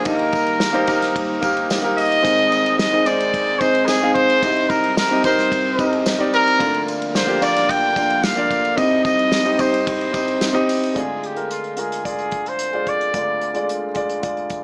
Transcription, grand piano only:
0.05 2.20 D#2 medium
0.05 2.20 D#3 medium
0.05 0.57 A#3 medium
0.05 0.57 D#4 medium
0.05 0.58 G4 medium
0.05 0.58 D#5 medium
0.73 0.84 A#3 medium
0.73 0.84 D#4 medium
0.73 0.85 G4 medium
0.73 0.85 C5 medium
0.87 1.29 A#3 medium
0.87 1.29 D#4 medium
0.87 1.29 G4 medium
0.87 1.29 A#4 loud
1.41 1.73 A#3 medium
1.41 1.73 D#4 medium
1.41 1.74 G4 medium
1.41 1.74 A#4 medium
1.82 2.14 A#3 medium
1.82 2.14 D#4 medium
1.82 2.15 G4 medium
1.82 2.15 A#4 medium
2.23 4.38 G#1 medium
2.23 4.38 G#2 medium
2.23 2.75 C4 medium
2.23 2.75 D#4 medium
2.23 2.75 G#4 medium
2.23 2.76 D#5 medium
2.93 3.03 C4 medium
2.93 3.03 D#4 medium
2.93 3.03 G#4 medium
2.93 3.04 D#5 medium
3.06 3.47 C4 medium
3.06 3.47 D#4 medium
3.06 3.48 G#4 medium
3.06 3.48 C5 medium
3.60 3.91 C4 medium
3.60 3.92 D#4 medium
3.60 3.92 G#4 medium
3.60 3.92 D#5 medium
4.01 4.32 C4 medium
4.01 4.33 D#4 medium
4.01 4.33 G#4 medium
4.01 4.33 F5 medium
4.42 6.57 C2 medium
4.42 6.57 C3 medium
4.42 4.94 C4 medium
4.42 4.94 D#4 medium
4.42 4.94 G4 medium
4.42 4.95 D#5 medium
5.10 5.21 C4 medium
5.10 5.21 D#4 medium
5.10 5.21 G4 medium
5.10 5.22 D#5 medium
5.24 5.65 C4 medium
5.24 5.65 D#4 medium
5.24 5.66 G4 medium
5.24 5.66 A#4 medium
5.78 6.09 C4 medium
5.78 6.09 D#4 medium
5.78 6.10 G4 medium
5.78 6.10 D#5 medium
6.19 6.50 C4 medium
6.19 6.50 D#4 medium
6.19 6.51 G4 medium
6.19 6.51 D5 medium
6.59 8.74 D2 medium
6.59 8.74 D3 medium
6.59 7.11 A#3 medium
6.59 7.11 D4 medium
6.59 7.11 F4 medium
6.59 7.12 D5 medium
7.26 7.38 A#3 medium
7.26 7.38 D4 medium
7.26 7.38 F4 medium
7.26 7.39 G4 medium
7.40 7.82 A#3 medium
7.40 7.82 D4 medium
7.40 7.83 F4 medium
7.40 7.83 D5 medium
7.96 8.27 A#3 medium
7.96 8.27 D4 medium
7.96 8.27 F4 medium
7.96 8.28 F5 medium
8.36 8.67 A#3 medium
8.36 8.68 D4 medium
8.36 8.68 F4 medium
8.36 8.68 D5 medium
8.76 10.91 C2 medium
8.76 10.91 C3 medium
8.76 9.28 C4 medium
8.76 9.29 D#4 medium
8.76 9.29 G4 medium
8.76 9.29 D#5 medium
9.44 9.55 C4 medium
9.44 9.56 D#4 medium
9.44 9.56 G4 medium
9.44 9.57 D#5 medium
9.58 10.00 C4 medium
9.58 10.00 D#4 medium
9.58 10.00 G4 medium
9.58 10.01 D#5 medium
10.13 10.44 C4 medium
10.13 10.44 D#4 medium
10.13 10.45 G4 medium
10.13 10.45 D#5 medium
10.53 10.85 C4 medium
10.53 10.85 D#4 medium
10.53 10.85 G4 medium
10.53 10.86 D#5 medium
10.94 13.10 D2 soft
10.94 13.10 D3 soft
10.94 11.26 G#3 medium
10.94 11.26 F4 soft
10.94 11.27 D5 medium
11.35 11.67 G#3 medium
11.35 11.67 F4 soft
11.35 11.68 A#4 medium
11.76 11.97 G#3 soft
11.76 11.98 F4 medium
11.76 11.98 A#4 medium
12.03 12.56 G#3 medium
12.03 12.56 F4 soft
12.03 12.56 D5 medium
12.73 13.04 G#3 medium
12.73 13.04 F4 soft
12.73 13.05 D5 medium
13.13 14.64 D2 soft
13.13 14.64 D3 soft
13.13 13.44 G#3 medium
13.13 13.45 F4 soft
13.13 13.46 D5 medium
13.54 13.85 G#3 medium
13.54 13.86 F4 medium
13.54 13.86 D5 medium
13.94 14.16 G#3 medium
13.94 14.16 F4 medium
13.94 14.17 D5 medium
14.21 14.64 G#3 medium
14.21 14.64 F4 medium
14.21 14.64 D5 medium

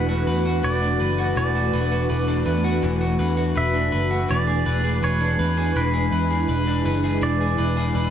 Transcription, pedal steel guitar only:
0.00 0.23 B4 medium
0.64 1.36 D5 medium
1.37 2.79 D5 medium
3.57 4.30 E5 medium
4.31 5.03 D5 medium
5.04 5.78 C#5 medium
5.77 7.23 B4 medium
7.23 8.10 D5 medium

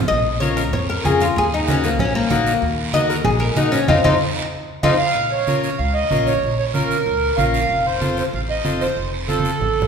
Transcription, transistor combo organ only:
0.42 0.64 C#4 medium
0.42 0.64 F4 medium
0.42 0.64 A#4 medium
1.04 1.26 C#4 medium
1.04 1.27 F4 medium
1.04 1.27 A#4 medium
1.67 1.90 D#4 medium
1.67 1.90 F#4 medium
1.67 1.90 A#4 medium
2.31 2.53 D#4 medium
2.31 2.53 F#4 medium
2.31 2.53 A#4 medium
2.94 3.16 D#4 medium
2.94 3.16 F#4 medium
2.94 3.17 A#4 medium
3.57 3.79 D#4 medium
3.57 3.80 F#4 medium
3.57 3.80 A#4 medium
3.88 3.99 D#4 medium
3.88 3.99 F4 medium
3.88 3.99 A4 medium
4.04 4.15 D#4 loud
4.04 4.15 F4 loud
4.04 4.15 A4 medium
4.84 4.94 D#4 loud
4.84 4.94 F4 loud
4.84 4.94 A4 medium
5.47 5.70 C#4 medium
5.47 5.70 F4 medium
5.47 5.70 A#4 medium
6.11 6.33 C#4 medium
6.11 6.34 F4 medium
6.11 6.34 A#4 medium
6.75 6.97 C#4 medium
6.75 6.97 F4 medium
6.75 6.97 A#4 medium
7.37 7.60 C#4 medium
7.37 7.61 F4 medium
7.37 7.61 A#4 medium
8.01 8.23 C4 medium
8.01 8.24 F4 medium
8.01 8.24 A4 medium
8.64 8.87 C4 medium
8.64 8.87 F4 medium
8.64 8.87 A4 medium
9.29 9.51 C4 medium
9.29 9.51 F4 medium
9.29 9.51 A4 medium

